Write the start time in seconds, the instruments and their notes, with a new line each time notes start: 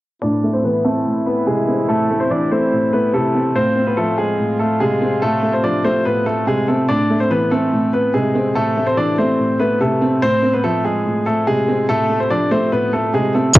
0.22 brass ensemble A2 E3 C4 E4, grand piano A2 D4 D5
0.44 grand piano A3
0.53 grand piano C4 C5
0.64 grand piano E3 B3 B4
0.85 grand piano A3 C4 A4
1.05 grand piano A2
1.26 grand piano B3 B4
1.47 grand piano C3 G#3 G#4
1.68 grand piano C4
1.88 grand piano A2 A3 A4
2.10 grand piano A3
2.20 grand piano C4 C5
2.30 grand piano E3 D4 D5
2.51 grand piano A3 C4 C5
2.72 grand piano A2
2.93 grand piano A3 B3 B4
3.14 grand piano C3 A3 A4
3.35 grand piano C4
3.55 grand piano A2 C4 C5, brass ensemble F3 F4
3.76 grand piano C4
3.87 grand piano B3 B4
3.97 grand piano F3 A3 A4
4.18 grand piano G#3 G#4
4.39 grand piano A2
4.59 grand piano A3 A4
4.80 grand piano C3 G#3 G#4
5.01 grand piano C4
5.22 grand piano A2 A3 A4
5.43 grand piano A3
5.53 grand piano C4 C5
5.64 grand piano F3 D4 D5
5.84 grand piano A3 C4 C5
6.05 grand piano A2 B3 B4
6.26 grand piano A3 A4
6.47 grand piano C3 G#3 G#4
6.68 grand piano A3 C4 A4
6.89 grand piano A2 D4 D5
7.10 grand piano A3
7.20 grand piano C4 C5
7.30 grand piano E3 B3 B4
7.51 grand piano A3 C4 A4
7.72 grand piano A2
7.93 grand piano B3 B4
8.13 grand piano C3 G#3 G#4
8.35 grand piano C4
8.55 grand piano A2 A3 A4
8.77 grand piano A3
8.87 grand piano C4 C5
8.97 grand piano E3 D4 D5
9.18 grand piano A3 C4 C5
9.39 grand piano A2
9.59 grand piano A3 B3 B4
9.80 grand piano C3 A3 A4
10.02 grand piano C4
10.22 grand piano A2 C4 C5
10.43 grand piano C4
10.53 grand piano B3 B4
10.64 grand piano F3 A3 A4
10.85 grand piano G#3 G#4
11.06 grand piano A2
11.26 grand piano A3 A4
11.47 grand piano C3 G#3 G#4
11.68 grand piano C4
11.89 grand piano A2 A3 A4
12.09 grand piano A3
12.20 grand piano C4 C5
12.30 grand piano F3 D4 D5
12.51 grand piano A3 C4 C5
12.72 grand piano A2 B3 B4
12.93 grand piano A3 A4
13.14 grand piano C3 G#3 G#4
13.35 grand piano A3 C4 A4
13.55 808-style bass A1, kick, closed hi-hat